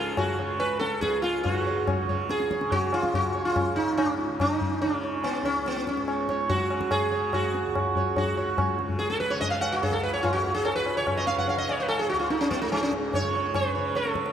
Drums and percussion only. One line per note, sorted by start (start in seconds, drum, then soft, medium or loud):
0.17 tabla na medium
0.17 tabla ge medium
0.60 tabla na medium
0.81 tabla te medium
1.03 tabla ke medium
1.24 tabla te medium
1.45 tabla tin medium
1.45 tabla ge medium
1.88 tabla na medium
1.88 tabla ge medium
2.09 tabla ge soft
2.30 tabla te medium
2.40 tabla te medium
2.51 tabla ke medium
2.61 tabla te medium
2.72 tabla tin medium
2.72 tabla ge medium
2.93 tabla na medium
3.03 tabla ke medium
3.14 tabla tin medium
3.14 tabla ge medium
3.56 tabla na medium
3.56 tabla ge medium
3.98 tabla na medium
4.40 tabla na medium
4.40 tabla ge medium
4.61 tabla ge medium
4.82 tabla tin medium
5.24 tabla na medium
5.45 tabla na medium
5.66 tabla te medium
5.76 tabla te medium
5.87 tabla ke medium
5.97 tabla te medium
6.08 tabla na medium
6.29 tabla ke medium
6.50 tabla tin medium
6.50 tabla ge medium
6.71 tabla na medium
6.81 tabla ke medium
6.91 tabla na medium
6.91 tabla ge medium
7.33 tabla na medium
7.33 tabla ge medium
7.54 tabla te medium
7.75 tabla na medium
7.75 tabla ge medium
7.96 tabla ge medium
8.17 tabla tin loud
8.17 tabla ge medium
8.58 tabla na medium
8.58 tabla ge medium
8.79 tabla te soft
8.89 tabla ge medium
9.00 tabla te medium
9.10 tabla te medium
9.21 tabla ke medium
9.31 tabla te medium
9.42 tabla tin medium
9.42 tabla ge medium
9.62 tabla na medium
9.83 tabla tin medium
9.83 tabla ge medium
10.25 tabla na medium
10.25 tabla ge medium
10.65 tabla na medium
10.86 tabla na medium
11.07 tabla na medium
11.07 tabla ge medium
11.28 tabla te medium
11.38 tabla ge medium
11.48 tabla tin medium
11.69 tabla na medium
11.89 tabla na medium
12.30 tabla te medium
12.41 tabla te medium
12.51 tabla ke medium
12.62 tabla te medium
12.72 tabla na medium
12.93 tabla ke medium
13.13 tabla tin medium
13.13 tabla ge medium
13.54 tabla na medium
13.54 tabla ge medium
13.95 tabla te medium
14.05 tabla te medium
14.15 tabla ke medium
14.26 tabla te medium